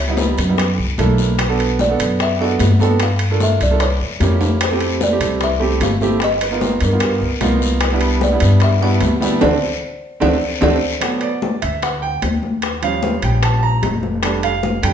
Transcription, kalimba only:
0.00 0.39 C#5 medium
0.38 0.47 B4 medium
0.58 0.96 A4 medium
1.40 1.81 B4 medium
1.81 2.21 D5 medium
2.22 2.30 E5 medium
2.42 2.82 F#5 loud
2.83 3.02 G5 medium
3.03 3.39 F5 loud
3.43 3.52 E5 loud
3.63 3.82 D5 medium
3.82 4.38 C#5 loud
4.63 5.03 C5 loud
5.03 5.40 D5 loud
5.44 5.80 E5 medium
5.83 6.20 F5 loud
6.24 6.43 D#5 loud
6.43 6.83 B4 medium
6.84 7.04 A#4 medium
7.03 7.40 G4 medium
7.84 8.21 B4 medium
8.23 8.64 D5 medium
8.63 8.83 E5 medium
8.83 9.24 F#5 loud
9.22 9.31 G5 medium
9.42 9.55 C5 loud
9.42 9.55 D5 medium
9.42 9.55 F#5 medium
10.22 10.35 C5 medium
10.22 10.35 D5 medium
10.22 10.35 F#5 loud
10.63 10.76 C5 loud
10.63 10.76 D5 loud
10.63 10.76 F#5 loud

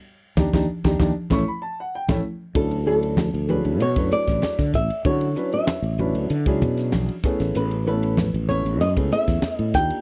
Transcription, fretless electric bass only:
0.37 0.49 D#2 loud
0.53 0.64 D#2 medium
0.85 0.96 D#2 medium
1.00 1.11 D#2 loud
1.31 1.42 A1 loud
2.09 2.20 A1 loud
2.55 3.30 D2 medium
3.34 3.63 D2 medium
3.65 3.80 D2 medium
3.80 3.95 B2 medium
3.96 4.10 F#2 medium
4.28 4.42 A1 medium
4.42 muted fretless electric bass stroke soft
4.59 4.73 D3 medium
4.74 4.89 A1 medium
5.05 5.34 D3 medium
5.82 6.12 A1 medium
6.14 6.29 D2 medium
6.30 6.45 D3 medium
6.46 6.60 C#2 medium
6.61 6.90 B2 medium
6.94 7.08 B1 medium
7.24 muted fretless electric bass stroke soft
7.40 7.54 A1 medium
7.56 8.30 A1 medium
8.34 8.63 A1 medium
8.65 8.81 A1 medium
8.81 8.95 F#2 medium
8.97 9.11 C#2 medium
9.28 9.42 E2 medium
9.43 muted fretless electric bass stroke soft
9.59 9.73 A2 medium
9.74 9.89 D#2 medium

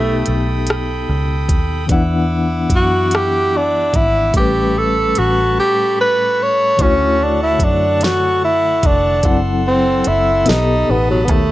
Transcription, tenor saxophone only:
0.00 0.68 A3 medium
2.75 3.17 F#4 medium
3.15 3.58 G4 medium
3.57 3.97 D4 medium
3.96 4.35 E4 medium
4.37 4.79 G4 medium
4.78 5.20 A4 medium
5.18 5.58 F#4 medium
5.59 5.96 G4 medium
6.01 6.44 B4 loud
6.43 6.84 C#5 medium
6.82 7.25 C#4 medium
7.23 7.42 D4 medium
7.43 7.65 E4 medium
7.64 8.05 D4 medium
8.03 8.43 F#4 medium
8.44 8.87 E4 medium
8.86 9.39 D4 medium
9.67 10.09 C4 medium
10.07 10.50 E4 medium
10.49 10.92 D#4 medium
10.90 11.09 B3 medium
11.11 11.26 F#3 medium
11.25 11.32 B3 medium
11.30 11.52 A3 medium

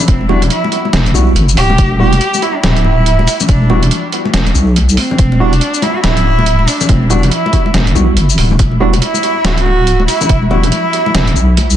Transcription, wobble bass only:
0.08 0.50 E1 loud
0.93 1.13 E1 medium
1.15 1.35 B1 loud
1.36 1.56 G1 medium
1.57 1.77 D1 loud
1.79 2.20 E1 loud
2.64 3.26 D1 loud
3.49 3.90 E1 loud
4.34 4.54 E1 medium
4.55 4.97 B1 loud
5.19 5.60 E1 loud
6.04 6.67 D1 loud
6.89 7.31 E1 loud
7.74 7.94 E1 medium
7.95 8.16 B1 medium
8.17 8.37 G1 medium
8.38 8.58 D1 loud
8.59 9.01 E1 loud
9.44 10.07 D1 loud
10.30 10.71 E1 loud
11.15 11.35 E1 loud
11.36 11.77 B1 loud

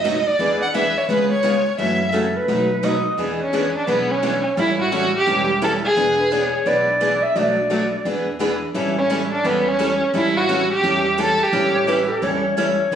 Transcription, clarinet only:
2.14 2.38 A4 medium
2.37 2.86 B4 medium
2.85 3.19 D#5 medium
6.19 6.34 B4 medium
6.32 6.69 C#5 medium
6.67 7.24 D5 medium
7.23 7.38 E5 medium
7.37 8.06 D5 medium
11.75 11.87 C#5 medium
11.88 12.10 B4 medium
12.09 12.24 A4 medium
12.23 12.56 C#5 loud
12.57 12.95 C#5 medium

